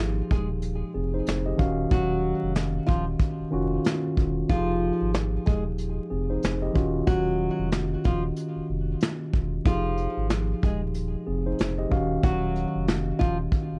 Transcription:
Already playing: sub bass G#1, tine electric piano F3 D#4 G4 G#4
0.31 sub bass D#1, nylon-string guitar G#3 G#4, kick
0.62 closed hi-hat
0.94 sub bass F1, tine electric piano C4 G#4
1.14 tine electric piano D#4 C5
1.26 sub bass F1, snare, closed hi-hat
1.46 tine electric piano G4 D#5
1.57 sub bass D#1, tine electric piano D#3 C#4 F#4 F5, kick
1.91 sub bass D#1, nylon-string guitar F#3 F#4, kick, closed hi-hat
2.43 sub bass F1
2.55 snare, closed hi-hat
2.87 sub bass D#1, nylon-string guitar F3 F4, kick, closed hi-hat
3.20 kick, closed hi-hat
3.40 sub bass F1
3.51 sub bass F1, tine electric piano D#3 C#4 F4 F#4
3.85 snare, closed hi-hat
4.17 sub bass E1, kick
4.48 sub bass F1, tine electric piano F3 D#4 G4 G#4, nylon-string guitar F3 F4, kick, closed hi-hat
5.01 sub bass G#1
5.14 snare, closed hi-hat
5.46 sub bass D#1, nylon-string guitar G#3 G#4, kick, closed hi-hat
5.78 closed hi-hat
6.10 sub bass F1, tine electric piano C4 G#4
6.30 tine electric piano D#4 C5
6.43 sub bass F1, snare, closed hi-hat
6.62 tine electric piano G4 D#5
6.73 sub bass D#1, tine electric piano D#3 C#4 F4 F#4, kick
7.07 sub bass D#1, nylon-string guitar F#3 F#4, kick, closed hi-hat
7.59 sub bass F1
7.72 snare, closed hi-hat
8.04 sub bass D#1, nylon-string guitar F3 F4, kick, closed hi-hat
8.36 closed hi-hat
8.56 sub bass F1
8.70 sub bass F1
9.01 snare, closed hi-hat
9.34 sub bass E1, kick
9.65 sub bass F1, tine electric piano F3 D#4 G4 G#4, nylon-string guitar F3 F4, kick, closed hi-hat
9.98 closed hi-hat
10.17 sub bass G#1
10.30 snare, closed hi-hat
10.63 sub bass D#1, nylon-string guitar G#3 G#4, kick
10.94 closed hi-hat
11.26 sub bass F1, tine electric piano C4 G#4
11.46 tine electric piano D#4 C5
11.59 sub bass F1, snare, closed hi-hat
11.78 tine electric piano G4 D#5
11.89 sub bass D#1, tine electric piano D#3 C#4 F#4 F5, kick
12.23 sub bass D#1, nylon-string guitar F#3 F#4, kick, closed hi-hat
12.56 closed hi-hat
12.76 sub bass F1
12.88 snare, closed hi-hat
13.19 sub bass D#1, nylon-string guitar F3 F4, kick
13.52 kick, closed hi-hat
13.72 sub bass F1

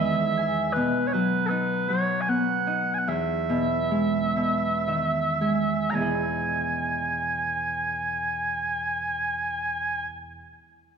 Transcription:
Already playing: string section E2 D#3 G#4, harp E2 D#3 G#3 B4 D#5, bagpipes E5
0.37 harp G#5
0.73 harp B2, bagpipes B4
1.07 bagpipes C#5
1.12 harp F#3, bagpipes B4
1.46 bagpipes A4 B4
1.51 harp D#4
1.88 harp F#3, bagpipes C#5
2.21 bagpipes G#5
2.28 harp B3, bagpipes F#5
2.67 harp D#4
2.94 bagpipes G#5
2.99 bagpipes F#5
3.08 harp E2, bagpipes E5
3.49 harp B2
3.91 harp G#3
4.36 harp B2
4.88 harp D#3 E5
5.41 harp G#3 G#5
5.90 harp E2 B2, bagpipes A#5
5.94 harp B3 E4, bagpipes G#5
6.00 harp G#4 D#5

